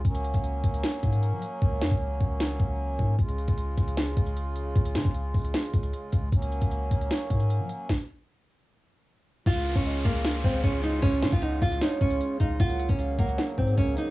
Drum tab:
HH |xxxxx-xxxxxxx-x-|----------------|xxxxx-xxxxxxx-x-|xxxxx-oxxxxxx-x-|
SD |--------o-------|--o-----o-------|--------o-------|--o-----o-------|
BD |o--o--o---o-----|o--o--o---o---o-|o--o--o---o-----|o--o--o---o---o-|

HH |xxxxx-xxxxxxx-x-|----------------|xxxxx-xxxx-xx-x-|xxxxx-xxxx-xx-x-|
SD |--------o-------|o---------------|--------o-------|--o-----o-------|
BD |o--o--o---o-----|o---------------|o--o--o---o-o---|o--o--o---o---o-|

HH |xxxxx-xxxx-xx-x-|
SD |--------o-------|
BD |o--o--o---o-o---|